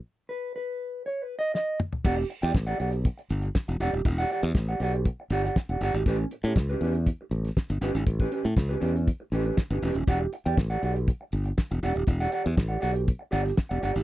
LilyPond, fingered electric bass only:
\new Staff \with { instrumentName = "Fingered electric bass" } { \clef bass \time 4/4 \key b \major \tempo 4 = 120 r1 | \key e \dorian e,,8 r16 e,16 a,,8 b,,8. r16 g,,8 r16 e,,16 e,,16 dis,,16 | e,,8 r16 e,16 a,,8 b,,8. r16 g,,8 r16 e,,16 g,,16 gis,,16 | a,,8 r16 a,16 cis,8 e,8. r16 a,,8 r16 g,,16 g,,16 gis,,16 |
a,,8 r16 a,16 cis,8 e,8. r16 a,,8 r16 g,,16 e,,16 dis,,16 | e,,8 r16 e,16 a,,8 b,,8. r16 g,,8 r16 e,,16 e,,16 dis,,16 | e,,8 r16 e,16 a,,8 b,,8. r16 g,,8 r16 e,,16 g,,16 gis,,16 | }